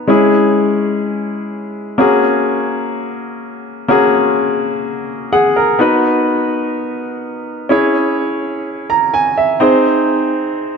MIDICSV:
0, 0, Header, 1, 2, 480
1, 0, Start_track
1, 0, Tempo, 476190
1, 89, Time_signature, 4, 2, 24, 8
1, 10858, End_track
2, 0, Start_track
2, 0, Title_t, "Grand piano"
2, 0, Program_c, 0, 0
2, 0, Control_c, 0, 64, 127
2, 0, Note_on_c, 0, 59, 74
2, 0, Note_on_c, 0, 63, 65
2, 0, Note_on_c, 0, 66, 65
2, 0, Note_on_c, 0, 71, 79
2, 75, Note_on_c, 0, 56, 71
2, 84, Note_on_c, 0, 61, 64
2, 91, Note_on_c, 0, 64, 67
2, 100, Note_on_c, 0, 68, 78
2, 102, Control_c, 0, 64, 0
2, 104, Note_off_c, 0, 59, 0
2, 106, Note_off_c, 0, 71, 0
2, 109, Note_off_c, 0, 63, 0
2, 112, Note_off_c, 0, 66, 0
2, 294, Control_c, 0, 64, 127
2, 1963, Note_off_c, 0, 56, 0
2, 1968, Note_off_c, 0, 61, 0
2, 1971, Note_off_c, 0, 64, 0
2, 1976, Note_off_c, 0, 68, 0
2, 1995, Note_on_c, 0, 58, 74
2, 2003, Note_on_c, 0, 61, 65
2, 2012, Note_on_c, 0, 66, 67
2, 2020, Note_on_c, 0, 68, 78
2, 2021, Control_c, 0, 64, 0
2, 2213, Control_c, 0, 64, 127
2, 3883, Note_off_c, 0, 58, 0
2, 3887, Note_off_c, 0, 61, 0
2, 3892, Note_off_c, 0, 66, 0
2, 3896, Note_off_c, 0, 68, 0
2, 3916, Note_on_c, 0, 58, 76
2, 3923, Note_on_c, 0, 61, 66
2, 3931, Note_on_c, 0, 66, 70
2, 3940, Note_on_c, 0, 68, 80
2, 5346, Note_off_c, 0, 68, 0
2, 5368, Note_on_c, 0, 68, 69
2, 5369, Note_on_c, 0, 78, 71
2, 5596, Note_off_c, 0, 68, 0
2, 5608, Note_on_c, 0, 70, 62
2, 5803, Note_off_c, 0, 58, 0
2, 5807, Note_off_c, 0, 61, 0
2, 5811, Note_off_c, 0, 66, 0
2, 5815, Note_off_c, 0, 78, 0
2, 5835, Note_on_c, 0, 59, 76
2, 5843, Note_on_c, 0, 63, 66
2, 5851, Note_on_c, 0, 66, 70
2, 5860, Control_c, 0, 64, 0
2, 5860, Note_on_c, 0, 71, 78
2, 6058, Control_c, 0, 64, 127
2, 6064, Note_off_c, 0, 70, 0
2, 7723, Note_off_c, 0, 59, 0
2, 7727, Note_off_c, 0, 63, 0
2, 7731, Note_off_c, 0, 66, 0
2, 7736, Note_off_c, 0, 71, 0
2, 7755, Note_on_c, 0, 61, 76
2, 7763, Note_on_c, 0, 64, 68
2, 7770, Note_on_c, 0, 68, 67
2, 7779, Note_on_c, 0, 73, 84
2, 7781, Control_c, 0, 64, 0
2, 7984, Control_c, 0, 64, 127
2, 8968, Note_on_c, 0, 82, 73
2, 9191, Note_off_c, 0, 82, 0
2, 9209, Note_on_c, 0, 80, 73
2, 9432, Note_off_c, 0, 80, 0
2, 9450, Note_on_c, 0, 76, 67
2, 9643, Note_off_c, 0, 61, 0
2, 9647, Note_off_c, 0, 64, 0
2, 9651, Note_off_c, 0, 68, 0
2, 9655, Note_off_c, 0, 73, 0
2, 9672, Note_off_c, 0, 76, 0
2, 9676, Note_on_c, 0, 60, 78
2, 9684, Note_on_c, 0, 63, 70
2, 9693, Note_on_c, 0, 68, 69
2, 9702, Control_c, 0, 64, 0
2, 9702, Note_on_c, 0, 72, 85
2, 9895, Control_c, 0, 64, 127
2, 10858, Note_off_c, 0, 60, 0
2, 10858, Note_off_c, 0, 63, 0
2, 10858, Note_off_c, 0, 68, 0
2, 10858, Note_off_c, 0, 72, 0
2, 10858, End_track
0, 0, End_of_file